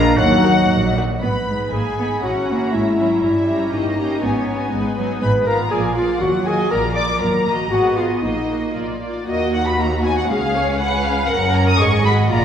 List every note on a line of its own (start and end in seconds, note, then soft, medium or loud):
0.00 0.17 G#3 medium
0.00 0.17 A#3 medium
0.00 0.20 D4 medium
0.00 0.18 F4 medium
0.00 0.16 A#5 medium
0.17 0.61 D#2 medium
0.17 0.94 F#3 medium
0.17 0.96 D#4 medium
0.17 0.96 F#4 medium
0.17 0.95 D#5 medium
0.17 0.94 F#5 medium
0.44 0.52 F#3 soft
0.44 0.52 D#4 medium
0.44 0.52 F#4 medium
0.44 0.52 A#4 medium
0.70 1.13 A#1 medium
0.70 1.14 A#2 medium
0.96 1.04 F#3 soft
0.96 1.04 D#4 soft
0.96 1.05 F#4 soft
0.96 1.05 A#4 soft
1.22 1.64 G#1 medium
1.22 1.31 B3 soft
1.22 1.75 B4 medium
1.22 1.69 B5 medium
1.47 1.97 G#3 soft
1.47 1.56 G#3 soft
1.47 1.97 D#4 soft
1.47 1.97 B5 soft
1.72 2.15 G#1 medium
1.72 1.98 A#3 soft
1.72 2.23 G#4 medium
1.72 2.22 G#5 medium
1.98 2.23 G#3 soft
1.98 2.06 B3 soft
1.98 2.23 D#4 soft
1.98 2.23 B5 soft
2.23 2.65 G#1 medium
2.23 2.48 C#4 soft
2.23 2.47 C#4 soft
2.23 2.47 E4 soft
2.23 2.72 F#4 medium
2.23 2.72 F#5 soft
2.23 2.48 A#5 soft
2.48 2.73 A#3 soft
2.48 2.97 C#4 soft
2.48 2.97 E4 soft
2.48 2.98 A#5 soft
2.72 3.15 G#1 medium
2.72 2.98 G#3 soft
2.72 3.22 E4 medium
2.72 3.21 E5 soft
2.98 3.23 F#3 soft
2.98 3.22 C#4 soft
2.98 3.22 E4 soft
2.98 3.23 A#5 soft
3.22 3.65 G1 medium
3.22 3.73 G3 soft
3.22 3.72 E4 medium
3.22 3.72 E5 medium
3.48 3.97 C#4 soft
3.48 3.97 G4 soft
3.48 3.97 A#5 soft
3.73 4.14 G1 soft
3.73 4.22 A#3 soft
3.73 4.24 D#4 medium
3.73 4.22 D#5 soft
3.98 4.22 C#4 soft
3.98 4.22 G4 soft
3.98 4.22 A#5 soft
4.22 4.64 G#1 medium
4.22 4.72 B3 soft
4.22 4.46 B3 soft
4.22 4.74 C#4 medium
4.22 4.46 D#4 soft
4.22 4.72 C#5 medium
4.22 4.46 G#5 soft
4.47 4.95 B3 soft
4.47 4.96 D#4 soft
4.47 4.95 G#5 soft
4.72 5.14 G#1 medium
4.72 4.96 G#3 medium
4.72 5.21 B3 medium
4.72 5.21 B4 medium
4.96 5.22 F#3 soft
4.96 5.21 B3 soft
4.96 5.21 D#4 soft
4.96 5.21 G#5 soft
5.21 5.63 G#1 medium
5.21 5.70 G#3 soft
5.21 5.46 B4 medium
5.21 5.30 B5 medium
5.46 5.71 B3 soft
5.46 5.70 F4 soft
5.46 5.58 A#4 medium
5.46 5.71 F5 soft
5.46 5.71 A#5 medium
5.71 6.13 A#1 medium
5.71 6.20 F3 medium
5.71 5.95 A#3 soft
5.71 5.95 F4 soft
5.71 5.82 G#4 medium
5.71 5.94 D5 soft
5.71 5.96 G#5 medium
5.95 6.21 A#3 soft
5.95 6.20 F4 medium
5.95 6.21 F4 soft
5.95 6.20 D5 soft
5.95 6.20 F5 medium
6.21 6.63 D#2 medium
6.21 6.70 F#3 medium
6.21 6.32 F#4 medium
6.21 6.46 F#5 medium
6.46 6.70 A#3 soft
6.46 6.71 F#4 soft
6.46 6.71 G#4 medium
6.46 6.70 D#5 soft
6.46 6.71 G#5 medium
6.71 7.13 A#1 medium
6.71 7.20 F3 medium
6.71 6.95 A#3 soft
6.71 6.95 F4 soft
6.71 6.82 A#4 medium
6.71 6.94 D5 soft
6.71 6.96 A#5 medium
6.95 7.20 A#3 soft
6.95 7.20 F4 soft
6.95 7.20 D5 soft
6.95 7.07 D5 medium
6.95 7.20 D6 medium
7.21 7.63 D#2 medium
7.21 7.46 F#3 medium
7.21 7.53 A#4 medium
7.21 7.70 A#5 medium
7.46 7.54 A#3 soft
7.46 7.71 A#3 soft
7.46 7.71 F#4 soft
7.46 7.71 D#5 soft
7.71 8.14 G#1 medium
7.71 7.96 B3 soft
7.71 8.22 B3 medium
7.71 7.98 F#4 medium
7.71 7.96 G#4 soft
7.71 7.97 D#5 soft
7.71 7.97 F#5 medium
7.96 8.22 B3 soft
7.96 8.24 F4 medium
7.96 8.22 G#4 soft
7.96 8.23 D#5 soft
7.96 8.05 F5 soft
8.22 8.66 A#1 medium
8.22 9.01 A#3 soft
8.22 8.75 D#4 medium
8.22 8.73 D#5 medium
8.49 8.74 A#3 soft
8.49 8.74 F#4 soft
8.49 8.74 D#5 soft
8.74 9.18 A#1 medium
8.74 9.00 A#3 soft
8.74 9.00 F4 soft
8.74 9.00 D5 soft
9.01 9.27 A#3 soft
9.01 9.27 F4 soft
9.01 9.26 D5 soft
9.27 10.26 D#2 medium
9.27 9.75 A#3 medium
9.27 9.75 F#4 medium
9.27 10.26 F#4 medium
9.27 9.51 D#5 medium
9.53 9.66 F#5 medium
9.66 9.79 B5 medium
9.79 9.87 A#3 soft
9.79 10.29 F#4 medium
9.79 10.04 A#5 medium
10.03 10.29 B3 medium
10.03 10.16 G#5 medium
10.17 10.29 F#5 medium
10.29 11.29 C#2 medium
10.29 11.30 C#2 medium
10.29 11.28 C#4 medium
10.29 11.30 G#4 medium
10.29 10.55 G#4 medium
10.29 10.78 F5 medium
10.55 10.80 C#5 medium
10.79 11.29 B4 medium
10.79 11.04 F#5 medium
11.04 11.29 F5 medium
11.29 11.76 F#1 medium
11.29 11.77 F#2 medium
11.29 11.76 C#4 medium
11.29 11.76 A#4 medium
11.29 11.80 A#4 medium
11.29 11.54 F#5 medium
11.54 11.67 A#5 medium
11.68 11.80 D#6 medium
11.79 12.31 G#1 medium
11.79 12.31 G#2 medium
11.79 12.05 G#4 medium
11.79 12.31 G#4 medium
11.79 12.31 D#5 medium
11.79 12.05 C#6 medium
12.05 12.31 F#4 medium
12.05 12.13 B5 medium
12.30 12.45 A#1 medium
12.30 12.45 A#2 medium
12.30 12.45 F4 medium
12.30 12.45 D5 medium
12.30 12.45 A#5 medium